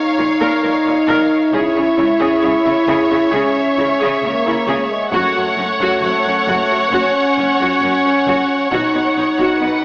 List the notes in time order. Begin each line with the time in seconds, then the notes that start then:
Already playing: D#4 C#5 F5
0.18 A#1 A#2 F4
0.40 A#2 A#4
0.62 A#1 A#2 A#4
0.86 A#2 F4
1.07 A#1 A#2 A#4
1.52 C#2 C#3 E4 G#4 C#5 E5
1.75 C#3 G#4
1.97 C#2 C#3 E4
2.19 C#3 G#4
2.42 C#2 C#3 G#4
2.65 C#3 E4
2.87 C#2 C#3 G#4
3.10 C#3 G#4
3.31 C#2 C#3 C#4 G#4
3.77 C#2 C#3 E4
3.99 C#3 G#4
4.22 C#2 C#3 A#3 G#4
4.46 C#3 E4
4.66 C#2 C#3 G#4
4.90 G#3
5.11 F#1 F#2 A3 F#4 C#5 F#5, taiko
5.35 F#2 F#4
5.57 F#1 F#2 C#4
5.80 F#2 F#4, taiko
6.02 F#1 F#2 F#4
6.25 F#2 C#4
6.48 F#1 F#2 F#4
6.70 F#2 F#4
6.90 F#1 F#2 C#4 F#4, taiko
7.37 F#1 F#2 C#4
7.60 F#2 F#4
7.81 F#1 F#2 F#4
8.05 F#2 C#4
8.27 F#1 F#2 F#4, taiko
8.71 B1 B2 D#4 F#4 F#5, taiko, cymbal swell
8.94 B2 F#4
9.16 B1 B2 D#4
9.38 B2 F#4, taiko
9.60 B1 B2 F#4 B4